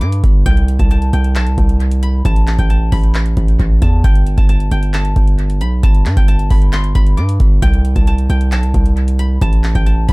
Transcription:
0.00 0.23 G2 loud
0.00 0.45 G5 medium
0.00 0.57 A5 medium
0.00 1.14 B5 medium
0.00 1.23 D6 medium
0.00 closed hi-hat soft
0.12 closed hi-hat medium
0.24 0.45 G1 loud
0.24 kick loud
0.24 closed hi-hat loud
0.46 0.78 C2 loud
0.46 1.13 G5 loud
0.46 kick loud
0.46 closed hi-hat medium
0.57 closed hi-hat medium
0.68 closed hi-hat medium
0.79 1.12 C2 loud
0.79 0.90 A5 medium
0.79 kick loud
0.79 closed hi-hat medium
0.91 1.35 A5 medium
0.91 closed hi-hat medium
1.02 closed hi-hat medium
1.13 1.37 C2 loud
1.13 2.58 G5 medium
1.13 closed hi-hat medium
1.24 closed hi-hat medium
1.35 1.48 B1 loud
1.35 2.25 A5 medium
1.35 clap loud
1.35 closed hi-hat medium
1.47 1.57 C2 loud
1.47 closed hi-hat medium
1.58 2.22 C2 loud
1.58 kick medium
1.58 closed hi-hat medium
1.69 closed hi-hat medium
1.80 closed hi-hat soft
1.91 closed hi-hat medium
2.03 2.92 B5 medium
2.03 closed hi-hat loud
2.25 2.57 A1 loud
2.25 2.70 A5 loud
2.25 kick loud
2.25 closed hi-hat medium
2.36 closed hi-hat medium
2.47 clap loud
2.47 closed hi-hat medium
2.59 2.91 A1 loud
2.59 4.04 G5 medium
2.59 kick loud
2.59 closed hi-hat medium
2.70 3.81 A5 medium
2.70 closed hi-hat medium
2.92 3.35 A1 loud
2.92 4.27 B5 medium
2.92 kick loud
2.92 open hi-hat medium
3.04 closed hi-hat medium
3.15 clap loud
3.15 closed hi-hat medium
3.26 closed hi-hat soft
3.37 3.58 A1 loud
3.37 kick medium
3.37 closed hi-hat medium
3.48 closed hi-hat medium
3.59 3.81 A1 loud
3.59 kick medium
3.59 closed hi-hat medium
3.82 4.03 E2 loud
3.82 4.37 A5 medium
3.82 kick loud
3.82 closed hi-hat loud
4.04 4.36 G1 loud
4.04 4.71 G5 medium
4.04 kick loud
4.04 closed hi-hat medium
4.15 closed hi-hat medium
4.27 closed hi-hat medium
4.37 4.70 G1 loud
4.37 4.49 A5 medium
4.37 kick loud
4.37 closed hi-hat soft
4.49 4.93 A5 medium
4.49 closed hi-hat medium
4.60 closed hi-hat medium
4.71 5.14 G1 loud
4.71 6.16 G5 medium
4.71 closed hi-hat medium
4.83 closed hi-hat soft
4.94 5.83 A5 medium
4.94 clap loud
4.94 closed hi-hat medium
5.05 closed hi-hat medium
5.16 5.62 G1 loud
5.16 kick medium
5.16 closed hi-hat medium
5.27 closed hi-hat medium
5.39 closed hi-hat soft
5.50 closed hi-hat medium
5.61 5.82 B1 loud
5.61 6.50 B5 medium
5.61 closed hi-hat loud
5.83 6.07 G1 loud
5.83 6.28 A5 loud
5.83 kick loud
5.83 closed hi-hat medium
5.95 closed hi-hat medium
6.06 6.16 G2 loud
6.06 clap medium
6.06 closed hi-hat medium
6.17 6.49 G1 loud
6.17 7.62 G5 medium
6.17 kick loud
6.17 closed hi-hat medium
6.28 7.73 A5 medium
6.28 closed hi-hat medium
6.39 closed hi-hat medium
6.50 6.94 G1 loud
6.50 6.79 B5 medium
6.50 kick loud
6.50 open hi-hat medium
6.62 closed hi-hat medium
6.73 7.01 C6 loud
6.73 clap loud
6.73 closed hi-hat medium
6.84 closed hi-hat soft
6.95 7.19 G1 loud
6.95 8.30 B5 medium
6.95 kick medium
6.95 closed hi-hat medium
7.07 closed hi-hat medium
7.17 7.39 G2 loud
7.17 8.39 D6 medium
7.17 closed hi-hat soft
7.29 closed hi-hat medium
7.40 7.62 G1 loud
7.40 kick loud
7.40 closed hi-hat loud
7.62 7.95 C2 loud
7.62 8.29 G5 loud
7.62 kick loud
7.62 closed hi-hat medium
7.74 closed hi-hat medium
7.85 closed hi-hat medium
7.96 8.28 C2 loud
7.96 8.07 A5 medium
7.96 kick loud
7.96 closed hi-hat medium
8.07 8.52 A5 medium
8.07 closed hi-hat medium
8.18 closed hi-hat medium
8.30 8.53 C2 loud
8.30 9.75 G5 medium
8.30 closed hi-hat medium
8.41 closed hi-hat medium
8.52 8.65 B1 loud
8.52 9.41 A5 medium
8.52 clap loud
8.52 closed hi-hat medium
8.63 8.74 C2 loud
8.63 closed hi-hat medium
8.74 9.39 C2 loud
8.74 kick medium
8.74 closed hi-hat medium
8.86 closed hi-hat medium
8.97 closed hi-hat soft
9.08 closed hi-hat medium
9.19 10.08 B5 medium
9.19 closed hi-hat loud
9.41 9.74 A1 loud
9.41 9.86 A5 loud
9.41 kick loud
9.41 closed hi-hat medium
9.53 closed hi-hat medium
9.64 clap loud
9.64 closed hi-hat medium
9.75 10.07 A1 loud
9.75 10.13 G5 medium
9.75 kick loud
9.75 closed hi-hat medium
9.86 10.13 A5 medium
9.86 closed hi-hat medium
10.08 10.13 A1 loud
10.08 10.13 B5 medium
10.08 kick loud
10.08 open hi-hat medium

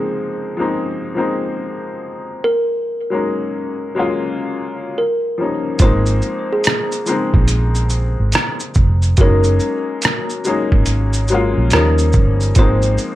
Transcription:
0.00 0.57 F3 medium
0.00 0.58 G#3 medium
0.00 0.59 A#3 medium
0.00 0.60 C4 medium
0.00 0.61 D#4 medium
0.00 2.39 G#4 medium
0.57 1.06 F3 medium
0.57 1.07 G#3 medium
0.57 1.07 A#3 medium
0.57 1.08 C4 medium
0.61 1.09 D#4 medium
1.15 2.42 F3 medium
1.15 2.42 G#3 medium
1.15 2.43 A#3 medium
1.15 2.43 C4 medium
1.19 2.44 D#4 medium
2.44 4.93 A#4 medium
3.10 3.75 F#3 medium
3.10 3.76 G#3 medium
3.10 3.76 A#3 medium
3.10 3.77 C#4 medium
3.14 3.77 D#4 medium
3.95 4.95 F#3 medium
3.95 4.95 G#3 medium
3.95 4.96 A#3 medium
3.95 4.97 C#4 medium
3.99 4.97 F4 medium
4.98 5.35 A#4 medium
5.38 5.74 F3 medium
5.38 5.75 G3 medium
5.38 5.76 A#3 medium
5.38 5.76 C#4 medium
5.42 5.77 D#4 medium
5.79 6.20 G#1 loud
5.79 6.89 F3 medium
5.79 6.89 G#3 medium
5.79 6.90 A#3 medium
5.79 6.90 C4 medium
5.79 6.47 C5 loud
5.79 kick loud
5.79 closed hi-hat medium
5.79 shaker medium
5.84 6.91 D#4 loud
6.06 shaker soft
6.22 shaker soft
6.53 9.16 G#4 medium
6.64 finger snap medium
6.64 cross-stick loud
6.64 closed hi-hat medium
6.64 shaker medium
6.92 shaker soft
7.06 8.48 F3 medium
7.06 8.48 G#3 medium
7.06 8.49 A#3 medium
7.06 8.49 C4 medium
7.06 shaker soft
7.10 8.50 D#4 medium
7.34 8.15 A#1 loud
7.34 kick medium
7.48 closed hi-hat medium
7.48 shaker medium
7.75 shaker soft
7.90 shaker soft
8.20 8.33 G#1 medium
8.32 finger snap medium
8.32 cross-stick loud
8.32 closed hi-hat medium
8.32 shaker medium
8.60 shaker medium
8.74 9.16 F1 loud
8.74 kick medium
8.74 shaker soft
9.02 shaker soft
9.17 9.58 F#1 loud
9.17 10.27 F#3 medium
9.17 10.28 G#3 medium
9.17 10.28 A#3 medium
9.17 kick loud
9.17 closed hi-hat medium
9.17 shaker medium
9.21 10.29 C#4 medium
9.21 10.29 D#4 loud
9.21 11.69 A#4 loud
9.44 shaker soft
9.60 shaker soft
10.02 finger snap medium
10.02 cross-stick loud
10.02 closed hi-hat medium
10.02 shaker medium
10.30 shaker soft
10.44 11.18 F#3 medium
10.44 11.19 G#3 medium
10.44 11.19 A#3 medium
10.44 11.20 C#4 medium
10.44 shaker medium
10.49 11.20 D#4 medium
10.72 11.53 G#1 medium
10.72 kick medium
10.86 closed hi-hat medium
10.86 shaker medium
11.13 shaker medium
11.28 11.72 F#3 medium
11.28 11.72 G#3 medium
11.28 11.72 A#3 medium
11.28 shaker soft
11.33 11.73 C#4 medium
11.33 11.74 F4 medium
11.57 11.71 A#1 medium
11.70 12.16 D#2 loud
11.70 12.45 F3 medium
11.70 12.46 G3 medium
11.70 12.46 A#3 medium
11.70 12.11 A#4 medium
11.70 finger snap medium
11.70 cross-stick loud
11.70 closed hi-hat medium
11.70 shaker medium
11.75 12.47 C#4 medium
11.75 12.47 D#4 medium
11.98 shaker medium
12.13 12.54 G1 medium
12.13 kick medium
12.13 shaker soft
12.41 shaker soft
12.55 12.96 G#1 loud
12.55 13.15 F3 medium
12.55 13.15 G#3 medium
12.55 13.15 A#3 medium
12.55 13.15 C5 loud
12.55 kick loud
12.55 closed hi-hat medium
12.55 shaker medium
12.60 13.15 C4 medium
12.60 13.15 D#4 medium
12.82 shaker soft
12.98 shaker soft

